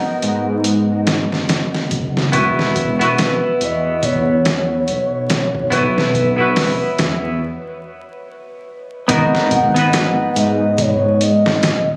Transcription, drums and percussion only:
0.22 closed hi-hat medium
0.64 closed hi-hat medium
1.07 snare loud
1.07 closed hi-hat medium
1.32 snare soft
1.49 snare medium
1.49 closed hi-hat medium
1.74 snare soft
1.91 kick medium
1.91 closed hi-hat medium
2.17 snare soft
2.33 kick loud
2.33 closed hi-hat medium
2.59 snare soft
2.76 kick medium
2.76 closed hi-hat medium
3.01 closed hi-hat soft
3.18 snare loud
3.18 closed hi-hat medium
3.61 closed hi-hat medium
4.03 kick loud
4.03 closed hi-hat medium
4.45 snare loud
4.45 closed hi-hat medium
4.88 closed hi-hat medium
5.30 snare medium
5.30 closed hi-hat medium
5.55 kick medium
5.72 kick loud
5.72 closed hi-hat medium
5.98 snare soft
6.14 kick medium
6.14 closed hi-hat medium
6.56 snare loud
6.56 open hi-hat medium
6.98 snare loud
6.98 closed hi-hat medium
9.09 kick loud
9.09 closed hi-hat medium
9.35 snare soft
9.51 kick medium
9.51 closed hi-hat medium
9.76 closed hi-hat soft
9.93 snare loud
9.93 closed hi-hat medium
10.36 closed hi-hat medium
10.78 kick loud
10.78 closed hi-hat medium
11.21 closed hi-hat medium
11.46 snare medium
11.63 snare loud
11.63 closed hi-hat medium

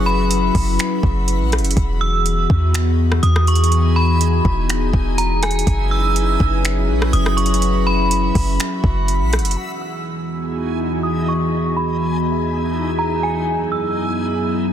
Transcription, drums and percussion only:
0.31 closed hi-hat medium
0.55 kick medium
0.55 open hi-hat medium
0.79 finger snap loud
0.79 closed hi-hat medium
1.03 kick loud
1.28 closed hi-hat medium
1.52 cross-stick loud
1.52 closed hi-hat soft
1.58 closed hi-hat medium
1.64 closed hi-hat medium
1.71 closed hi-hat medium
1.77 kick loud
1.77 closed hi-hat medium
2.26 closed hi-hat medium
2.50 kick loud
2.74 finger snap loud
2.74 closed hi-hat medium
3.12 cross-stick medium
3.23 closed hi-hat medium
3.36 cross-stick loud
3.47 closed hi-hat medium
3.56 closed hi-hat medium
3.64 closed hi-hat medium
3.72 closed hi-hat medium
4.21 closed hi-hat medium
4.45 kick loud
4.70 finger snap loud
4.70 closed hi-hat medium
4.93 kick loud
5.18 closed hi-hat medium
5.43 cross-stick loud
5.43 closed hi-hat medium
5.51 closed hi-hat medium
5.59 closed hi-hat medium
5.67 kick loud
5.67 closed hi-hat medium
6.16 closed hi-hat medium
6.40 kick medium
6.65 finger snap loud
6.65 closed hi-hat medium
7.02 cross-stick medium
7.13 closed hi-hat medium
7.26 cross-stick loud
7.38 closed hi-hat medium
7.46 closed hi-hat medium
7.54 closed hi-hat medium
7.62 closed hi-hat medium
8.11 closed hi-hat medium
8.35 kick medium
8.35 open hi-hat medium
8.60 finger snap loud
8.60 closed hi-hat medium
8.84 kick loud
9.08 closed hi-hat medium
9.33 cross-stick medium
9.33 closed hi-hat soft
9.39 closed hi-hat medium
9.45 closed hi-hat medium
9.51 closed hi-hat medium

